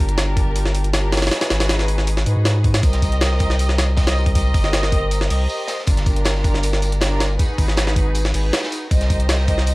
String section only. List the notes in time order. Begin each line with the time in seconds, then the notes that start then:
Already playing: D4 F4 G4 A#4
0.94 D4 F4 G4 A#4
1.31 D#4 F#4 G#4 B4
2.26 D#4 F#4 G#4 B4
2.83 G4 A#4 C5 D#5
3.97 G4 A#4 C5 D#5
4.35 G4 A#4 C5 D#5
5.30 G4 A#4 C5 D#5
5.87 D4 F4 G4 A#4
7.01 D4 F4 G4 A#4
7.39 D#4 F#4 G#4 B4
8.34 D#4 F#4 G#4 B4
8.91 G4 A#4 C5 D#5